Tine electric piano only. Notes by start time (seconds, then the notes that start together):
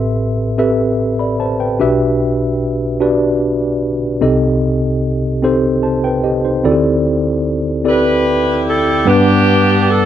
Already playing: A1 A2 C4 G4 A4 B4 E5 C6
0.58 C4 G4 A4 B4 E5
1.19 D5 B5
1.40 C5 A5
1.60 B4 G5
1.79 B1 B2 D4 F#4 G4 B4 E5
3.00 D4 F#4 G4 B4 D5
4.21 C2 C3 C4 D#4 G4 A4 D#5
5.42 C4 D#4 G4 A4 C5
5.83 C5 A5
6.04 B4 G5
6.24 G4 D#5
6.45 D#4 C5
6.64 D2 D3 C4 E4 F#4 A4 D5
6.71 G4
7.84 C4 E4 G4 A4 D5
9.05 G2 G3 B3 D4 B4 F#5